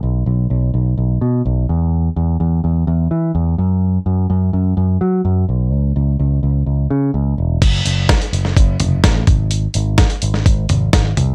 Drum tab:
CC |----------------|----------------|----------------|----------------|
HH |----------------|----------------|----------------|----------------|
SD |----------------|----------------|----------------|----------------|
FT |----------------|----------------|----------------|----------------|
BD |----------------|----------------|----------------|----------------|

CC |x---------------|----------------|
HH |x-x-xxx-x-x-x-x-|x-x-xxx-x-x-x-x-|
SD |----o--o----o---|----o--o----o---|
FT |----------o---o-|----------o---o-|
BD |o---o---o---o-o-|----o---o---o---|